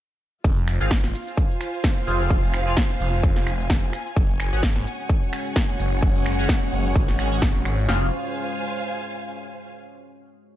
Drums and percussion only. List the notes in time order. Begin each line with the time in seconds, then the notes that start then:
0.44 kick, shaker
0.58 shaker
0.68 finger snap, open hi-hat, shaker
0.81 shaker
0.91 kick, snare, shaker
1.04 snare, shaker
1.14 open hi-hat, shaker
1.28 shaker
1.37 kick, shaker
1.51 shaker
1.61 finger snap, open hi-hat, shaker
1.74 shaker
1.84 kick, snare, shaker
1.97 shaker
2.07 open hi-hat, shaker
2.21 shaker
2.30 kick, shaker
2.43 open hi-hat, shaker
2.54 finger snap, open hi-hat, shaker
2.67 shaker
2.77 kick, snare, shaker
2.90 shaker
3.00 open hi-hat, shaker
3.14 shaker
3.23 kick, shaker
3.36 snare, shaker
3.47 finger snap, open hi-hat, shaker
3.60 shaker
3.70 kick, snare, shaker
3.83 shaker
3.93 finger snap, open hi-hat, shaker
4.07 shaker
4.16 kick, shaker
4.30 shaker
4.40 finger snap, open hi-hat, shaker
4.53 shaker
4.63 kick, snare, shaker
4.76 snare, shaker
4.86 open hi-hat, shaker
5.00 shaker
5.09 kick, shaker
5.23 shaker
5.33 finger snap, open hi-hat, shaker
5.46 shaker
5.56 kick, snare, shaker
5.70 shaker
5.79 open hi-hat, shaker
5.93 shaker
6.02 kick, shaker
6.16 open hi-hat, shaker
6.26 finger snap, open hi-hat, shaker
6.39 shaker
6.49 kick, snare, shaker
6.63 shaker
6.72 open hi-hat, shaker
6.86 shaker
6.96 kick, shaker
7.08 snare, shaker
7.19 finger snap, open hi-hat, shaker
7.32 shaker
7.42 kick, snare, shaker
7.56 shaker
7.65 finger snap, open hi-hat, shaker
7.79 shaker
7.89 snare